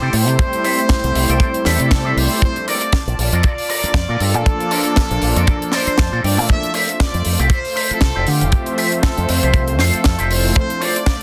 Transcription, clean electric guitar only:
0.01 G4 A4 C5 G5
0.27 muted clean electric guitar stroke
0.63 G4 A4 C5 E5
0.89 muted clean electric guitar stroke
1.29 G4 A4 C5 G5
1.65 G4 A4 C5 E5
2.05 G4 A4 C5 E5
2.31 muted clean electric guitar stroke
2.67 F4 A4 A#4 D5
2.93 muted clean electric guitar stroke
3.33 F4 A4 A#4 D5
3.69 F4 A4 A#4 D5
4.09 F4 A4 A#4 D5
4.34 muted clean electric guitar stroke
4.71 F4 A4 A#4 D5
4.96 muted clean electric guitar stroke
5.36 F4 A4 A#4 D5
5.73 F4 A4 A#4 D5
5.87 F5
5.98 A5
6.12 F4 A4 A#4 D5
6.24 G5
6.37 muted clean electric guitar stroke
6.74 F4 A4 C5 E5
7.00 muted clean electric guitar stroke
7.39 F4 A4 C5 E5
7.76 F4 A4 C5 E5
8.15 F4 A4 C5 E5
8.41 muted clean electric guitar stroke
8.77 F4 A4 C5 E5
9.03 muted clean electric guitar stroke
9.43 F4 A4 C5 E5
9.79 F4 A4 C5 F5
10.18 F4 A4 C5 E5
10.44 muted clean electric guitar stroke
10.81 F4 A4 C5 D5

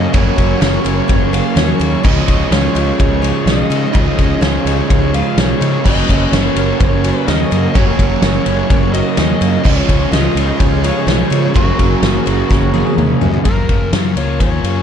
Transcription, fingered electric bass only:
0.14 F#1
0.38 F#1
0.62 F#1
0.85 F#1
1.10 F#1
1.56 D#2
1.80 D#2
2.05 C#2
2.28 C#2
2.51 C#2
2.75 C#2
3.00 C#2
3.46 B1
3.70 C#3
3.95 C#2
4.19 C#2
4.41 C#2
4.65 C#2
4.91 C#2
5.37 B1
5.61 C#3
5.85 F#1
6.09 F#1
6.32 F#1
6.55 F#1
6.80 F#1
7.28 D#2
7.52 F#2
7.76 F#1
7.99 F#1
8.22 F#1
8.46 F#1
8.70 F#1
9.17 D#2
9.41 F#2
9.65 C#2
9.89 C#2
10.11 C#2
10.35 C#2
10.60 C#2
11.07 B1
11.31 C#3
11.56 F#1
11.80 F#1
12.02 F#1
12.27 F#1
12.50 F#1
12.97 D#2
13.22 F#2
13.45 F#1
13.70 F#1
13.92 F#2
14.15 C#2
14.40 D#2
14.63 F#2

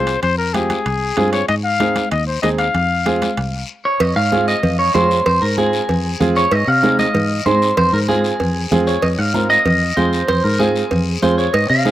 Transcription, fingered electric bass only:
Already playing: C2
0.23 F2
0.86 C2
1.17 G2
1.49 G#2
2.12 D#2
2.43 D#2
2.74 F2
3.37 C2
4.00 F2
4.16 G#2
4.63 F2
4.95 F2
5.26 F2
5.42 G#2
5.89 F2
6.21 F2
6.52 G#2
6.67 C3
7.15 G#2
7.46 G#2
7.77 F2
7.93 G#2
8.40 F2
8.72 F2
9.03 F2
9.18 G#2
9.65 F2
9.97 F2
10.29 F2
10.44 G#2
10.91 F2
11.23 F2
11.54 G#2
11.70 C3

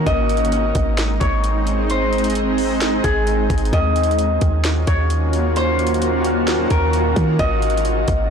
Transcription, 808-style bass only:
0.07 G#1
0.75 G#1
1.21 G#1
3.04 G#1
3.50 G#1
3.73 D#2
4.42 D#2
4.88 D#2
6.71 D#2
7.16 D#3
7.39 G#1
8.08 G#1

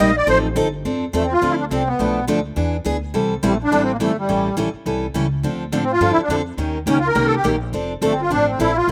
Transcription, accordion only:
0.00 D#5
0.17 D5
0.29 C5
1.14 A3
1.24 C4
1.33 F4
1.51 E4
1.61 D4
1.71 C4
1.87 B3
3.44 G3
3.53 A3
3.64 D4
3.83 C4
3.93 A#3
4.02 A3
4.19 G3
5.74 A3
5.84 C4
5.92 F4
6.12 E4
6.23 D4
6.89 C#4
6.99 F4
7.07 A#4
7.26 A4
7.36 G4
8.03 A3
8.11 C4
8.22 F4
8.31 D4
8.48 C4
8.60 E4
8.77 F4

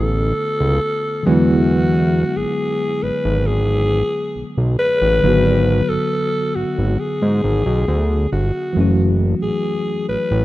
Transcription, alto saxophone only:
Already playing: A4
1.26 F#4
2.37 G#4
3.03 B4
3.47 G#4
4.79 B4
5.89 A4
6.56 F#4
7.00 G#4
8.32 F#4
9.43 G#4
10.09 B4

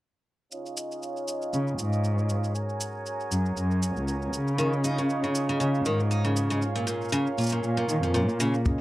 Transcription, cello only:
1.54 C#3
1.79 G#2
3.31 F#2
3.56 F#2
3.97 C#2
4.33 C#3
5.60 C#3
5.86 G#2
7.39 A#2
7.64 A#2
7.89 D#3
8.04 F2
8.29 A#2

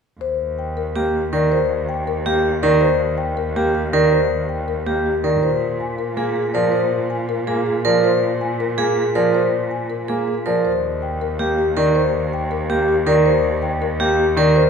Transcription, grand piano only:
0.96 A#3
1.33 D#3
2.26 A#3
2.63 D#3
3.56 A#3
3.93 D#3
4.86 A#3
5.24 D#3
6.17 A#3
6.55 F3
7.48 A#3
7.85 F3
8.78 A#3
9.16 F3
10.09 A#3
10.46 F3
11.39 A#3
11.77 D#3
12.69 A#3
13.07 D#3
14.00 A#3
14.37 D#3

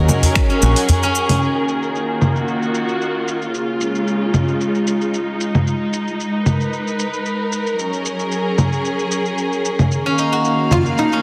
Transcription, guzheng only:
Already playing: C#4 D#4 F#4 A#4
0.50 C#4
0.63 F#4
0.77 F#4
1.03 C#4
10.06 C#4
10.19 D#4
10.33 F#4
11.13 C#4

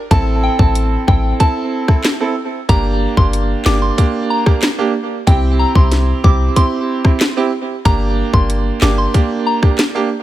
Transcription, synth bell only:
0.11 A5
0.43 G5
0.60 A5
1.08 G5
1.40 A5
2.69 A#5
3.17 C6
3.66 D6
3.82 C6
4.30 A#5
5.27 G5
5.59 A#5
5.76 C6
6.24 D6
6.56 C6
7.85 A#5
8.34 C6
8.82 D6
8.98 C6
9.47 A#5

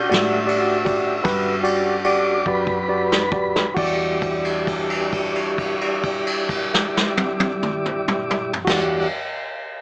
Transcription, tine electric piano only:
0.09 F#4 G4 D5
0.47 F#4 G4 D5
0.85 F#4 G4 D5
1.23 F#4 G4 B4
1.63 F#4 G4 D5
2.05 F#4 G4 D5
2.47 F#4 G4 D5
2.89 F#4 G4 D5
3.32 F#4 G4 D5
3.74 F#4 G4 D5
8.65 F#4 G4
8.69 D5

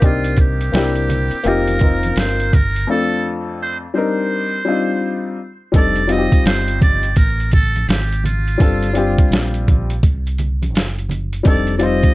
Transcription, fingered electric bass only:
0.02 C2
0.73 C2
1.45 F1
2.17 G1
5.74 F1
6.45 G1
7.17 A1
7.88 G#1
8.60 G1
9.31 A#1
10.03 C2
10.74 F#1
11.46 F1

